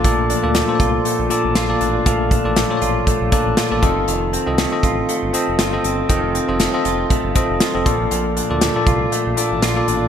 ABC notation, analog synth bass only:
X:1
M:4/4
L:1/16
Q:"Swing 16ths" 1/4=119
K:Bb
V:1 name="Analog synth bass" clef=bass
B,,,3 D,,2 z C,,2 z B,,, z A,,, B,,,2 A,,,2 | B,,,3 A,,,2 z A,,,2 z B,,, z A,,, z A,,, F,,, G,,, | F,,,3 C,,2 z A,,,2 z G,,, z F,,, G,,,2 G,,,2 | F,,,3 F,,,2 z F,,,2 z G,,, z F,,, z F,,, B,,, A,,, |
B,,,3 D,,2 z C,,2 z B,,, z A,,, B,,,2 A,,,2 |]